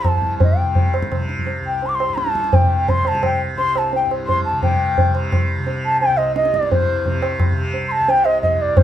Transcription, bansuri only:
0, 0, Header, 1, 2, 480
1, 0, Start_track
1, 0, Tempo, 351906
1, 559, Time_signature, 3, 2, 24, 8
1, 6314, Tempo, 345423
1, 12154, End_track
2, 0, Start_track
2, 0, Title_t, "Bansuri"
2, 0, Program_c, 0, 73
2, 103, Note_on_c, 0, 81, 81
2, 573, Note_off_c, 0, 81, 0
2, 592, Note_on_c, 0, 79, 71
2, 1251, Note_off_c, 0, 79, 0
2, 2271, Note_on_c, 0, 79, 78
2, 2533, Note_on_c, 0, 84, 94
2, 2554, Note_off_c, 0, 79, 0
2, 2572, Note_on_c, 0, 86, 75
2, 2592, Note_off_c, 0, 84, 0
2, 2657, Note_on_c, 0, 84, 88
2, 2678, Note_off_c, 0, 86, 0
2, 2966, Note_on_c, 0, 81, 83
2, 2986, Note_off_c, 0, 84, 0
2, 3465, Note_on_c, 0, 79, 79
2, 3486, Note_off_c, 0, 81, 0
2, 3946, Note_on_c, 0, 84, 91
2, 3966, Note_off_c, 0, 79, 0
2, 4195, Note_on_c, 0, 81, 84
2, 4216, Note_off_c, 0, 84, 0
2, 4421, Note_off_c, 0, 81, 0
2, 4436, Note_on_c, 0, 79, 64
2, 4645, Note_off_c, 0, 79, 0
2, 4881, Note_on_c, 0, 84, 100
2, 5153, Note_on_c, 0, 81, 81
2, 5174, Note_off_c, 0, 84, 0
2, 5377, Note_off_c, 0, 81, 0
2, 5398, Note_on_c, 0, 79, 65
2, 5603, Note_off_c, 0, 79, 0
2, 5823, Note_on_c, 0, 84, 89
2, 6051, Note_off_c, 0, 84, 0
2, 6068, Note_on_c, 0, 81, 74
2, 6293, Note_off_c, 0, 81, 0
2, 6323, Note_on_c, 0, 79, 78
2, 6994, Note_off_c, 0, 79, 0
2, 8013, Note_on_c, 0, 81, 91
2, 8220, Note_off_c, 0, 81, 0
2, 8228, Note_on_c, 0, 79, 99
2, 8457, Note_on_c, 0, 75, 91
2, 8478, Note_off_c, 0, 79, 0
2, 8712, Note_off_c, 0, 75, 0
2, 8724, Note_on_c, 0, 75, 92
2, 8994, Note_on_c, 0, 74, 81
2, 9015, Note_off_c, 0, 75, 0
2, 9220, Note_off_c, 0, 74, 0
2, 9238, Note_on_c, 0, 72, 76
2, 9892, Note_off_c, 0, 72, 0
2, 10832, Note_on_c, 0, 84, 72
2, 10883, Note_on_c, 0, 81, 95
2, 10903, Note_off_c, 0, 84, 0
2, 11129, Note_on_c, 0, 79, 94
2, 11150, Note_off_c, 0, 81, 0
2, 11344, Note_on_c, 0, 75, 93
2, 11365, Note_off_c, 0, 79, 0
2, 11575, Note_off_c, 0, 75, 0
2, 11584, Note_on_c, 0, 75, 83
2, 11854, Note_on_c, 0, 74, 84
2, 11875, Note_off_c, 0, 75, 0
2, 12077, Note_on_c, 0, 72, 76
2, 12098, Note_off_c, 0, 74, 0
2, 12154, Note_off_c, 0, 72, 0
2, 12154, End_track
0, 0, End_of_file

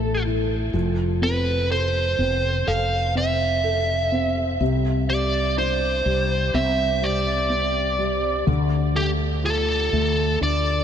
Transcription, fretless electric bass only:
0, 0, Header, 1, 2, 480
1, 0, Start_track
1, 0, Key_signature, 0, "major"
1, 0, Tempo, 967742
1, 366, Time_signature, 4, 2, 24, 8
1, 5376, End_track
2, 0, Start_track
2, 0, Title_t, "Fretless electric bass"
2, 0, Program_c, 0, 35
2, 0, Note_on_c, 0, 33, 72
2, 345, Note_off_c, 0, 33, 0
2, 364, Note_on_c, 0, 29, 78
2, 1065, Note_off_c, 0, 29, 0
2, 1084, Note_on_c, 0, 29, 66
2, 1308, Note_off_c, 0, 29, 0
2, 1326, Note_on_c, 0, 29, 70
2, 2266, Note_off_c, 0, 29, 0
2, 2283, Note_on_c, 0, 36, 75
2, 2985, Note_off_c, 0, 36, 0
2, 3004, Note_on_c, 0, 36, 75
2, 3228, Note_off_c, 0, 36, 0
2, 3243, Note_on_c, 0, 36, 85
2, 4185, Note_off_c, 0, 36, 0
2, 4203, Note_on_c, 0, 38, 81
2, 4904, Note_off_c, 0, 38, 0
2, 4924, Note_on_c, 0, 38, 67
2, 5148, Note_off_c, 0, 38, 0
2, 5164, Note_on_c, 0, 38, 74
2, 5376, Note_off_c, 0, 38, 0
2, 5376, End_track
0, 0, End_of_file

